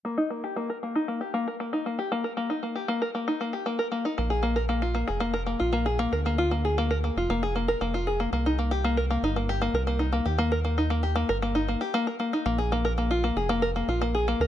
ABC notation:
X:1
M:4/4
L:1/16
Q:1/4=116
K:Bbmix
V:1 name="Five-string banjo"
B, E B, G B, B B, E B, G B, B B, E B, G | B, B B, E B, G B, B B, E B, G B, B B, E | B, A B, B B, F B, A B, B B, F B, A B, B | B, F B, A B, B B, F B, A B, B B, F A B, |
B, E B, G B, B B, E B, G B, B B, E B, G | B, B B, E B, G B, B B, E B, G B, B B, E | B, A B, B B, F B, A B, B B, F B, A B, B |]
V:2 name="Analog synth bass" clef=bass
z16 | z16 | B,,,6- B,,, F,,,4 B,,,4 D,,- | D,,6- D,, F,,, F,,,4 F,,,4 |
C,,6- C,, G,,,4 C,,4 E,,- | E,,6- E,, G,,,4 z4 z | B,,,6- B,,, F,,,4 B,,,4 D,, |]